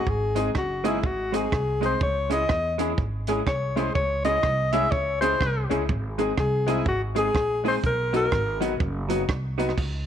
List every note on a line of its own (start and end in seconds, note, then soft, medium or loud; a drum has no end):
0.00 0.11 F#4 medium
0.07 0.48 G#1 loud
0.07 0.38 G#4 medium
0.07 kick loud
0.35 0.49 G#3 medium
0.35 0.47 G#3 loud
0.35 0.49 C4 medium
0.35 0.47 C4 medium
0.35 0.49 D#4 loud
0.35 0.48 D#4 medium
0.35 0.50 G#4 medium
0.35 0.48 G#4 loud
0.35 closed hi-hat medium
0.54 1.04 F#1 loud
0.54 0.85 F#4 medium
0.54 muted hollow-body jazz guitar stroke soft
0.54 kick loud
0.54 cross-stick loud
0.84 0.98 G#3 loud
0.84 0.95 G#3 loud
0.84 0.98 C4 medium
0.84 0.96 C4 medium
0.84 0.98 D#4 medium
0.84 0.96 D#4 medium
0.84 1.07 E4 medium
0.84 0.98 G#4 medium
0.84 0.96 G#4 loud
0.84 closed hi-hat medium
1.03 1.45 G#1 loud
1.03 1.38 F#4 medium
1.03 kick loud
1.32 1.46 G#3 medium
1.32 1.44 G#3 medium
1.32 1.47 C4 medium
1.32 1.45 C4 medium
1.32 1.47 D#4 medium
1.32 1.45 D#4 medium
1.32 1.47 G#4 medium
1.32 1.45 G#4 medium
1.32 closed hi-hat medium
1.36 1.84 G#4 loud
1.52 1.94 C2 medium
1.52 kick loud
1.52 cross-stick loud
1.81 1.95 G#3 medium
1.81 1.93 G#3 medium
1.81 1.95 C4 medium
1.81 1.93 C4 medium
1.81 1.95 D#4 medium
1.81 1.93 D#4 medium
1.81 1.95 G#4 medium
1.81 1.93 G#4 loud
1.81 closed hi-hat medium
1.86 2.02 C5 medium
2.01 2.42 C#2 loud
2.01 2.30 C#5 loud
2.01 kick loud
2.30 2.43 G#3 medium
2.30 2.41 G#3 medium
2.30 2.43 C#4 medium
2.30 2.42 C#4 medium
2.30 2.44 E4 medium
2.30 2.42 E4 medium
2.30 2.44 G#4 medium
2.30 2.42 G#4 loud
2.30 2.77 D#5 loud
2.30 closed hi-hat medium
2.49 2.91 E2 loud
2.49 2.56 E4 soft
2.49 2.56 G#4 soft
2.49 muted hollow-body jazz guitar stroke soft
2.49 kick loud
2.49 cross-stick loud
2.78 2.92 G#3 medium
2.78 2.90 G#3 medium
2.78 2.92 C#4 medium
2.78 2.90 C#4 medium
2.78 2.92 E4 medium
2.78 2.90 E4 medium
2.78 2.92 G#4 loud
2.78 2.90 G#4 loud
2.78 closed hi-hat medium
2.98 3.39 G#1 loud
2.98 kick loud
3.27 3.38 G#3 medium
3.27 3.41 G#3 medium
3.27 3.38 C#4 medium
3.27 3.41 C#4 medium
3.27 3.39 E4 medium
3.27 3.41 E4 medium
3.27 3.39 G#4 medium
3.27 3.42 G#4 medium
3.27 closed hi-hat medium
3.47 3.88 C2 medium
3.47 3.79 C#5 medium
3.47 kick loud
3.47 cross-stick loud
3.76 3.87 G#3 medium
3.76 3.89 G#3 medium
3.76 3.87 C#4 medium
3.76 3.89 C#4 medium
3.76 3.87 E4 medium
3.76 3.90 E4 medium
3.76 3.87 G#4 loud
3.76 3.90 G#4 medium
3.76 3.94 C5 medium
3.76 closed hi-hat medium
3.95 4.37 C#2 loud
3.95 4.23 C#5 medium
3.95 kick loud
4.25 4.38 G#3 medium
4.25 4.35 G#3 medium
4.25 4.38 C#4 medium
4.25 4.36 C#4 medium
4.25 4.38 E4 medium
4.25 4.36 E4 medium
4.25 4.38 G#4 loud
4.25 4.36 G#4 medium
4.25 4.74 D#5 loud
4.25 closed hi-hat medium
4.43 4.85 C2 medium
4.43 4.50 E4 soft
4.43 4.50 G#4 soft
4.43 muted hollow-body jazz guitar stroke soft
4.43 kick loud
4.43 cross-stick loud
4.73 4.86 G#3 medium
4.73 4.84 G#3 loud
4.73 4.86 C#4 loud
4.73 4.84 C#4 medium
4.73 4.86 E4 loud
4.73 4.84 E4 medium
4.73 4.87 G#4 loud
4.73 4.84 G#4 loud
4.73 4.93 E5 loud
4.73 closed hi-hat medium
4.91 5.33 C#2 medium
4.91 5.20 C#5 loud
4.91 kick loud
5.21 5.32 G#3 medium
5.21 5.35 G#3 medium
5.21 5.32 C#4 medium
5.21 5.35 C#4 loud
5.21 5.32 E4 medium
5.21 5.35 E4 medium
5.21 5.32 G#4 loud
5.21 5.36 G#4 loud
5.21 5.67 C5 loud
5.21 closed hi-hat loud
5.41 5.66 C2 medium
5.41 kick loud
5.41 cross-stick loud
5.70 5.86 C#2 loud
5.70 5.81 G#3 loud
5.70 5.83 G#3 medium
5.70 5.81 C#4 medium
5.70 5.84 C#4 medium
5.70 5.81 E4 medium
5.70 5.84 E4 medium
5.70 5.81 G#4 loud
5.70 5.84 G#4 medium
5.70 closed hi-hat medium
5.89 6.31 G#1 loud
5.89 kick loud
6.18 6.29 G#3 medium
6.18 6.32 G#3 medium
6.18 6.29 C4 medium
6.18 6.32 C4 medium
6.18 6.32 D#4 medium
6.18 6.30 D#4 medium
6.18 6.32 G#4 medium
6.18 6.30 G#4 loud
6.18 closed hi-hat medium
6.38 6.79 C2 loud
6.38 6.71 G#4 loud
6.38 kick loud
6.38 cross-stick loud
6.66 6.78 G#3 loud
6.66 6.80 G#3 medium
6.66 6.78 C4 medium
6.66 6.80 C4 medium
6.66 6.78 D#4 loud
6.66 6.81 D#4 medium
6.66 6.87 E4 medium
6.66 6.78 G#4 loud
6.66 6.81 G#4 medium
6.66 closed hi-hat medium
6.86 7.27 G#1 medium
6.86 7.01 F#4 medium
6.86 kick loud
7.15 7.26 G#3 medium
7.15 7.29 G#3 medium
7.15 7.26 C4 medium
7.15 7.29 C4 medium
7.15 7.26 D#4 medium
7.15 7.29 D#4 medium
7.15 7.26 G#4 loud
7.15 7.29 G#4 medium
7.15 7.63 G#4 loud
7.15 closed hi-hat medium
7.35 7.76 A#1 medium
7.35 kick loud
7.35 cross-stick loud
7.64 7.75 G#3 medium
7.64 7.78 G#3 medium
7.64 7.75 C4 medium
7.64 7.78 C4 medium
7.64 7.75 D#4 medium
7.64 7.78 D#4 medium
7.64 7.75 G#4 loud
7.64 7.78 G#4 loud
7.64 open hi-hat soft
7.68 7.76 C5 medium
7.84 8.25 B1 loud
7.84 8.13 A#4 loud
7.84 kick loud
7.84 hi-hat pedal medium
8.13 8.24 F#3 medium
8.13 8.26 F#3 medium
8.13 8.24 B3 medium
8.13 8.26 B3 medium
8.13 8.26 D#4 medium
8.13 8.24 D#4 medium
8.13 8.26 F#4 loud
8.13 8.24 F#4 loud
8.13 8.60 A#4 loud
8.13 closed hi-hat medium
8.31 8.73 G#1 loud
8.31 8.38 D#4 soft
8.31 kick loud
8.31 cross-stick loud
8.60 8.71 F#3 loud
8.60 8.74 F#3 medium
8.60 8.72 B3 loud
8.60 8.75 B3 loud
8.60 8.72 D#4 medium
8.60 8.75 D#4 medium
8.60 8.72 F#4 loud
8.60 8.75 F#4 loud
8.60 closed hi-hat medium
8.80 9.22 F#1 loud
8.80 kick loud
9.09 9.22 F#3 medium
9.09 9.20 F#3 medium
9.09 9.23 B3 medium
9.09 9.21 B3 medium
9.09 9.23 D#4 loud
9.09 9.21 D#4 medium
9.09 9.23 F#4 loud
9.09 9.21 F#4 loud
9.09 closed hi-hat loud
9.29 9.70 C2 medium
9.29 kick loud
9.29 cross-stick loud
9.58 9.71 F#3 medium
9.58 9.69 F#3 loud
9.58 9.71 B3 medium
9.58 9.69 B3 medium
9.58 9.71 D#4 medium
9.58 9.69 D#4 medium
9.58 9.72 F#4 loud
9.58 9.70 F#4 loud
9.58 closed hi-hat medium
9.69 cross-stick medium
9.78 10.06 C#2 loud
9.78 kick loud
9.78 crash loud